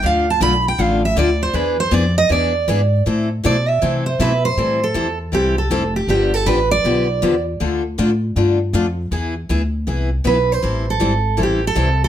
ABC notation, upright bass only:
X:1
M:4/4
L:1/8
Q:"Swing" 1/4=159
K:Am
V:1 name="Upright bass" clef=bass
D,,2 B,,,2 A,,,2 D,,2 | E,,2 F,,2 E,,2 ^G,,2 | A,,2 B,,2 C,2 B,,2 | A,,2 E,,2 C,,2 F,,,2 |
G,,,2 A,,,2 B,,,2 E,,2 | D,,2 A,,2 G,,2 F,,2 | E,,2 D,,2 C,,2 B,,,2 | A,,,2 ^G,,,2 A,,,2 C,,2 |]